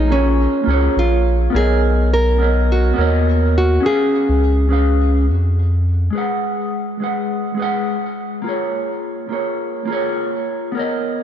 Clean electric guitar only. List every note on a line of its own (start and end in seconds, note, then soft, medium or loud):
0.08 0.62 A#3 medium
0.08 0.63 F4 medium
0.08 0.64 G#4 medium
0.08 0.65 C#5 medium
0.63 1.48 A#3 medium
0.63 1.50 F4 medium
0.68 1.51 G#4 medium
0.68 1.52 C#5 loud
1.50 2.35 B3 medium
1.50 2.36 A#4 medium
1.55 2.37 C#5 medium
1.55 2.38 D#5 loud
2.38 2.93 B3 medium
2.38 2.94 A#4 medium
2.38 2.95 C#5 medium
2.38 2.95 D#5 medium
2.94 3.79 B3 medium
2.94 3.80 A#4 medium
2.98 3.81 C#5 medium
2.98 3.82 D#5 loud
3.80 4.66 C#4 medium
3.80 4.67 G#4 medium
3.85 4.68 B4 medium
3.85 4.69 F5 loud
4.69 5.24 C#4 medium
4.69 5.25 G#4 medium
4.69 5.25 B4 medium
4.69 5.26 F5 medium
6.10 6.96 G#3 medium
6.10 6.97 G#4 medium
6.15 6.98 B4 medium
6.15 6.99 F#5 medium
7.00 7.54 G#3 medium
7.00 7.56 G#4 medium
7.00 7.56 B4 medium
7.00 7.57 F#5 medium
7.55 8.40 G#3 medium
7.55 8.41 G#4 medium
7.59 8.43 B4 medium
7.59 8.44 F#5 medium
8.42 9.27 A#3 medium
8.42 9.28 F4 medium
8.47 9.29 G#4 medium
8.47 9.30 C#5 medium
9.29 9.84 A#3 medium
9.29 9.86 F4 medium
9.29 9.86 G#4 medium
9.29 9.87 C#5 medium
9.85 10.71 A#3 medium
9.85 10.72 F4 medium
9.90 10.73 G#4 medium
9.90 10.74 C#5 medium
10.72 11.23 B3 medium
10.72 11.23 A#4 medium
10.77 11.23 C#5 medium
10.77 11.23 D#5 medium